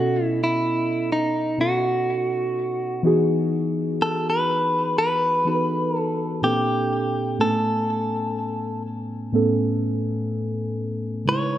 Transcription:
0, 0, Header, 1, 3, 480
1, 0, Start_track
1, 0, Tempo, 967742
1, 1750, Time_signature, 4, 2, 24, 8
1, 5745, End_track
2, 0, Start_track
2, 0, Title_t, "Clean electric guitar"
2, 0, Program_c, 0, 27
2, 0, Note_on_c, 0, 66, 91
2, 125, Note_off_c, 0, 66, 0
2, 125, Note_on_c, 0, 64, 91
2, 214, Note_off_c, 0, 64, 0
2, 216, Note_on_c, 0, 64, 78
2, 556, Note_off_c, 0, 64, 0
2, 558, Note_on_c, 0, 63, 85
2, 796, Note_off_c, 0, 63, 0
2, 798, Note_on_c, 0, 66, 82
2, 1494, Note_off_c, 0, 66, 0
2, 1995, Note_on_c, 0, 69, 93
2, 2129, Note_off_c, 0, 69, 0
2, 2131, Note_on_c, 0, 71, 98
2, 2466, Note_off_c, 0, 71, 0
2, 2472, Note_on_c, 0, 71, 110
2, 2968, Note_off_c, 0, 71, 0
2, 2968, Note_on_c, 0, 69, 110
2, 3192, Note_off_c, 0, 69, 0
2, 3194, Note_on_c, 0, 67, 81
2, 3673, Note_off_c, 0, 67, 0
2, 3675, Note_on_c, 0, 69, 79
2, 4373, Note_off_c, 0, 69, 0
2, 5599, Note_on_c, 0, 73, 96
2, 5745, Note_off_c, 0, 73, 0
2, 5745, End_track
3, 0, Start_track
3, 0, Title_t, "Synth keys"
3, 0, Program_c, 1, 88
3, 0, Control_c, 1, 64, 127
3, 0, Note_on_c, 1, 47, 76
3, 0, Note_on_c, 1, 59, 68
3, 0, Note_on_c, 1, 61, 70
3, 0, Note_on_c, 1, 69, 86
3, 0, Note_on_c, 1, 75, 66
3, 473, Note_off_c, 1, 47, 0
3, 475, Note_off_c, 1, 59, 0
3, 477, Note_off_c, 1, 61, 0
3, 479, Note_off_c, 1, 75, 0
3, 497, Note_off_c, 1, 69, 0
3, 783, Note_on_c, 1, 47, 74
3, 788, Note_on_c, 1, 59, 68
3, 791, Note_on_c, 1, 61, 63
3, 795, Note_on_c, 1, 63, 66
3, 801, Note_on_c, 1, 69, 76
3, 1432, Note_off_c, 1, 47, 0
3, 1435, Note_off_c, 1, 59, 0
3, 1437, Note_off_c, 1, 61, 0
3, 1439, Note_off_c, 1, 63, 0
3, 1441, Note_off_c, 1, 69, 0
3, 1503, Note_on_c, 1, 52, 99
3, 1507, Note_on_c, 1, 59, 89
3, 1511, Note_on_c, 1, 63, 92
3, 1515, Note_on_c, 1, 66, 87
3, 1517, Control_c, 1, 64, 0
3, 1519, Note_on_c, 1, 68, 104
3, 1611, Control_c, 1, 64, 127
3, 2282, Note_off_c, 1, 52, 0
3, 2284, Note_off_c, 1, 59, 0
3, 2286, Note_off_c, 1, 63, 0
3, 2288, Note_off_c, 1, 66, 0
3, 2290, Note_off_c, 1, 68, 0
3, 2703, Note_on_c, 1, 52, 68
3, 2708, Note_on_c, 1, 59, 67
3, 2712, Note_on_c, 1, 63, 65
3, 2717, Note_on_c, 1, 66, 63
3, 2720, Note_on_c, 1, 69, 66
3, 2752, Note_off_c, 1, 69, 0
3, 2753, Note_on_c, 1, 71, 77
3, 3184, Note_on_c, 1, 46, 68
3, 3187, Note_off_c, 1, 52, 0
3, 3188, Note_on_c, 1, 58, 70
3, 3189, Note_off_c, 1, 59, 0
3, 3191, Note_off_c, 1, 63, 0
3, 3191, Note_on_c, 1, 60, 69
3, 3194, Note_off_c, 1, 66, 0
3, 3196, Control_c, 1, 64, 0
3, 3197, Note_on_c, 1, 62, 64
3, 3201, Note_on_c, 1, 69, 84
3, 3211, Note_off_c, 1, 71, 0
3, 3273, Control_c, 1, 64, 127
3, 3586, Note_off_c, 1, 46, 0
3, 3588, Note_off_c, 1, 58, 0
3, 3590, Note_off_c, 1, 60, 0
3, 3593, Note_off_c, 1, 62, 0
3, 3595, Note_off_c, 1, 69, 0
3, 3663, Note_on_c, 1, 45, 78
3, 3667, Note_on_c, 1, 57, 65
3, 3671, Note_on_c, 1, 59, 66
3, 3675, Note_on_c, 1, 61, 67
3, 3677, Control_c, 1, 64, 0
3, 3680, Note_on_c, 1, 80, 82
3, 3752, Control_c, 1, 64, 127
3, 4313, Note_off_c, 1, 45, 0
3, 4315, Note_off_c, 1, 57, 0
3, 4317, Note_off_c, 1, 59, 0
3, 4319, Note_off_c, 1, 61, 0
3, 4321, Note_off_c, 1, 80, 0
3, 4624, Note_on_c, 1, 45, 86
3, 4628, Note_on_c, 1, 57, 75
3, 4632, Note_on_c, 1, 59, 78
3, 4637, Note_on_c, 1, 61, 75
3, 4640, Note_on_c, 1, 69, 89
3, 5273, Note_off_c, 1, 45, 0
3, 5275, Note_off_c, 1, 57, 0
3, 5277, Note_off_c, 1, 59, 0
3, 5280, Note_off_c, 1, 61, 0
3, 5281, Note_off_c, 1, 69, 0
3, 5582, Note_on_c, 1, 49, 72
3, 5588, Note_on_c, 1, 56, 69
3, 5591, Note_on_c, 1, 63, 64
3, 5596, Control_c, 1, 64, 0
3, 5596, Note_on_c, 1, 64, 71
3, 5600, Note_on_c, 1, 71, 82
3, 5696, Control_c, 1, 64, 127
3, 5745, Note_off_c, 1, 49, 0
3, 5745, Note_off_c, 1, 56, 0
3, 5745, Note_off_c, 1, 63, 0
3, 5745, Note_off_c, 1, 64, 0
3, 5745, Note_off_c, 1, 71, 0
3, 5745, End_track
0, 0, End_of_file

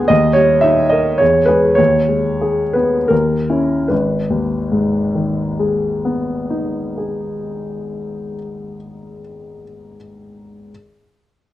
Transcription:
0, 0, Header, 1, 2, 480
1, 0, Start_track
1, 0, Key_signature, 5, "minor"
1, 0, Tempo, 558140
1, 89, Time_signature, 3, 2, 24, 8
1, 1534, Tempo, 630252
1, 2014, Tempo, 687285
1, 2494, Tempo, 791557
1, 3934, Tempo, 756620
1, 7776, End_track
2, 0, Start_track
2, 0, Title_t, "Grand piano"
2, 0, Program_c, 0, 0
2, 0, Control_c, 0, 64, 127
2, 0, Note_on_c, 0, 38, 53
2, 0, Note_on_c, 0, 56, 39
2, 0, Note_on_c, 0, 59, 46
2, 0, Note_on_c, 0, 65, 42
2, 0, Note_on_c, 0, 68, 49
2, 0, Note_on_c, 0, 71, 40
2, 0, Note_on_c, 0, 77, 71
2, 0, Note_on_c, 0, 79, 91
2, 0, Note_on_c, 0, 80, 77
2, 68, Note_on_c, 0, 75, 80
2, 83, Note_on_c, 0, 39, 56
2, 87, Note_off_c, 0, 59, 0
2, 106, Control_c, 0, 64, 0
2, 107, Note_off_c, 0, 56, 0
2, 107, Note_off_c, 0, 79, 0
2, 108, Note_off_c, 0, 68, 0
2, 110, Note_off_c, 0, 77, 0
2, 111, Note_off_c, 0, 65, 0
2, 111, Note_off_c, 0, 80, 0
2, 113, Note_off_c, 0, 71, 0
2, 114, Note_off_c, 0, 38, 0
2, 255, Control_c, 0, 64, 127
2, 286, Note_on_c, 0, 73, 69
2, 310, Note_on_c, 0, 55, 37
2, 311, Note_off_c, 0, 75, 0
2, 525, Note_on_c, 0, 76, 77
2, 540, Note_off_c, 0, 73, 0
2, 546, Note_on_c, 0, 63, 43
2, 694, Note_off_c, 0, 55, 0
2, 768, Note_on_c, 0, 75, 64
2, 779, Note_off_c, 0, 76, 0
2, 789, Note_on_c, 0, 70, 42
2, 933, Note_off_c, 0, 63, 0
2, 1005, Note_off_c, 0, 39, 0
2, 1014, Note_on_c, 0, 73, 66
2, 1023, Note_off_c, 0, 75, 0
2, 1033, Note_off_c, 0, 70, 0
2, 1034, Note_on_c, 0, 40, 49
2, 1056, Control_c, 0, 64, 0
2, 1198, Control_c, 0, 64, 127
2, 1251, Note_on_c, 0, 71, 67
2, 1271, Note_off_c, 0, 73, 0
2, 1276, Note_on_c, 0, 56, 42
2, 1277, Note_on_c, 0, 68, 44
2, 1504, Note_on_c, 0, 73, 70
2, 1506, Note_off_c, 0, 56, 0
2, 1506, Note_off_c, 0, 68, 0
2, 1518, Note_off_c, 0, 40, 0
2, 1519, Note_off_c, 0, 71, 0
2, 1528, Note_on_c, 0, 39, 47
2, 1548, Control_c, 0, 64, 0
2, 1675, Control_c, 0, 64, 127
2, 1759, Note_on_c, 0, 56, 34
2, 2013, Note_on_c, 0, 68, 39
2, 2149, Note_off_c, 0, 56, 0
2, 2235, Note_off_c, 0, 73, 0
2, 2237, Note_on_c, 0, 71, 50
2, 2253, Note_on_c, 0, 59, 33
2, 2393, Note_off_c, 0, 68, 0
2, 2464, Note_off_c, 0, 39, 0
2, 2478, Note_on_c, 0, 70, 54
2, 2489, Note_off_c, 0, 71, 0
2, 2494, Note_on_c, 0, 39, 44
2, 2496, Note_off_c, 0, 59, 0
2, 2511, Control_c, 0, 64, 0
2, 2641, Control_c, 0, 64, 127
2, 2732, Note_on_c, 0, 61, 32
2, 2733, Note_on_c, 0, 64, 36
2, 2954, Note_off_c, 0, 61, 0
2, 2954, Note_off_c, 0, 64, 0
2, 2963, Note_off_c, 0, 39, 0
2, 2965, Note_on_c, 0, 71, 46
2, 2971, Note_off_c, 0, 70, 0
2, 2979, Note_on_c, 0, 32, 42
2, 2994, Control_c, 0, 64, 0
2, 3144, Control_c, 0, 64, 127
2, 3220, Note_on_c, 0, 39, 37
2, 3474, Note_on_c, 0, 44, 38
2, 3737, Note_on_c, 0, 51, 33
2, 4009, Note_on_c, 0, 56, 35
2, 4298, Note_on_c, 0, 59, 36
2, 4587, Note_on_c, 0, 63, 32
2, 4887, Note_on_c, 0, 68, 26
2, 5755, Note_off_c, 0, 71, 0
2, 5769, Note_off_c, 0, 32, 0
2, 6022, Note_off_c, 0, 39, 0
2, 6287, Note_off_c, 0, 44, 0
2, 6562, Note_off_c, 0, 51, 0
2, 6778, Note_off_c, 0, 56, 0
2, 6778, Note_off_c, 0, 59, 0
2, 6778, Note_off_c, 0, 63, 0
2, 6779, Note_off_c, 0, 68, 0
2, 7255, Control_c, 0, 64, 0
2, 7776, End_track
0, 0, End_of_file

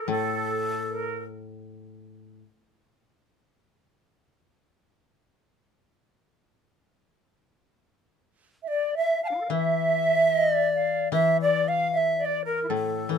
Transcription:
0, 0, Header, 1, 4, 480
1, 0, Start_track
1, 0, Tempo, 768246
1, 66, Time_signature, 4, 2, 24, 8
1, 3425, Tempo, 806452
1, 6785, Tempo, 786370
1, 8039, End_track
2, 0, Start_track
2, 0, Title_t, "Shakuhachi"
2, 0, Program_c, 0, 77
2, 0, Note_on_c, 0, 69, 92
2, 67, Note_off_c, 0, 69, 0
2, 71, Note_on_c, 0, 69, 81
2, 769, Note_off_c, 0, 69, 0
2, 5340, Note_on_c, 0, 74, 70
2, 5490, Note_off_c, 0, 74, 0
2, 5504, Note_on_c, 0, 76, 75
2, 5653, Note_off_c, 0, 76, 0
2, 5664, Note_on_c, 0, 81, 64
2, 5684, Note_on_c, 0, 77, 69
2, 5690, Note_off_c, 0, 81, 0
2, 5821, Note_on_c, 0, 76, 95
2, 5830, Note_off_c, 0, 77, 0
2, 6315, Note_off_c, 0, 76, 0
2, 6315, Note_on_c, 0, 75, 95
2, 6440, Note_off_c, 0, 75, 0
2, 6440, Note_on_c, 0, 74, 95
2, 6780, Note_off_c, 0, 74, 0
2, 6784, Note_on_c, 0, 76, 80
2, 6935, Note_off_c, 0, 76, 0
2, 6962, Note_on_c, 0, 74, 76
2, 7125, Note_on_c, 0, 77, 77
2, 7134, Note_off_c, 0, 74, 0
2, 7281, Note_off_c, 0, 77, 0
2, 7281, Note_on_c, 0, 77, 78
2, 7301, Note_on_c, 0, 76, 85
2, 7307, Note_off_c, 0, 77, 0
2, 7444, Note_off_c, 0, 76, 0
2, 7444, Note_on_c, 0, 76, 71
2, 7472, Note_on_c, 0, 74, 77
2, 7478, Note_off_c, 0, 76, 0
2, 7592, Note_off_c, 0, 74, 0
2, 7596, Note_on_c, 0, 70, 60
2, 7741, Note_off_c, 0, 70, 0
2, 7767, Note_on_c, 0, 69, 75
2, 8039, Note_off_c, 0, 69, 0
2, 8039, End_track
3, 0, Start_track
3, 0, Title_t, "Flute"
3, 0, Program_c, 1, 73
3, 63, Note_on_c, 1, 69, 69
3, 363, Note_off_c, 1, 69, 0
3, 552, Note_on_c, 1, 70, 54
3, 775, Note_off_c, 1, 70, 0
3, 5296, Note_on_c, 1, 76, 51
3, 5327, Note_on_c, 1, 74, 68
3, 5336, Note_off_c, 1, 76, 0
3, 5483, Note_off_c, 1, 74, 0
3, 5487, Note_on_c, 1, 76, 63
3, 5644, Note_off_c, 1, 76, 0
3, 5652, Note_on_c, 1, 77, 71
3, 5700, Note_off_c, 1, 77, 0
3, 5704, Note_on_c, 1, 62, 33
3, 5721, Note_off_c, 1, 62, 0
3, 5725, Note_on_c, 1, 64, 35
3, 5734, Note_on_c, 1, 65, 37
3, 5737, Note_off_c, 1, 64, 0
3, 5759, Note_off_c, 1, 65, 0
3, 5762, Note_on_c, 1, 69, 41
3, 5782, Note_off_c, 1, 69, 0
3, 5786, Note_on_c, 1, 70, 44
3, 5807, Note_off_c, 1, 70, 0
3, 5810, Note_on_c, 1, 74, 44
3, 5824, Note_off_c, 1, 74, 0
3, 5828, Note_on_c, 1, 76, 71
3, 6526, Note_off_c, 1, 76, 0
3, 6563, Note_on_c, 1, 77, 59
3, 6777, Note_off_c, 1, 77, 0
3, 6786, Note_on_c, 1, 76, 69
3, 6937, Note_off_c, 1, 76, 0
3, 6957, Note_on_c, 1, 74, 69
3, 7103, Note_off_c, 1, 74, 0
3, 7113, Note_on_c, 1, 77, 66
3, 7262, Note_off_c, 1, 77, 0
3, 7272, Note_on_c, 1, 76, 68
3, 7421, Note_off_c, 1, 76, 0
3, 7427, Note_on_c, 1, 74, 71
3, 7578, Note_off_c, 1, 74, 0
3, 7590, Note_on_c, 1, 70, 63
3, 7696, Note_off_c, 1, 70, 0
3, 7705, Note_on_c, 1, 64, 32
3, 7732, Note_off_c, 1, 64, 0
3, 7735, Note_on_c, 1, 69, 62
3, 7748, Note_off_c, 1, 69, 0
3, 8039, End_track
4, 0, Start_track
4, 0, Title_t, "Koto"
4, 0, Program_c, 2, 107
4, 49, Note_on_c, 2, 45, 51
4, 1500, Note_off_c, 2, 45, 0
4, 5816, Note_on_c, 2, 52, 47
4, 6773, Note_off_c, 2, 52, 0
4, 6780, Note_on_c, 2, 52, 53
4, 7745, Note_on_c, 2, 45, 48
4, 7977, Note_off_c, 2, 52, 0
4, 7984, Note_on_c, 2, 52, 42
4, 8039, Note_off_c, 2, 45, 0
4, 8039, Note_off_c, 2, 52, 0
4, 8039, End_track
0, 0, End_of_file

